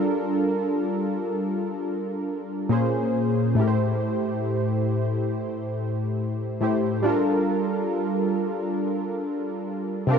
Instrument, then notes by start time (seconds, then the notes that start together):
synth keys
Already playing: G3 D4 F4 A4 A#4
2.69 A#2 A#3 C#4 G#4 C5
3.55 A2 A3 E4
3.60 G4 A#4
3.67 C5
6.61 A2 A3 E4 G4 C5
7.02 G3 D4 F4
7.07 A4 A#4
10.07 C3 C4 D4
10.12 F4 A#4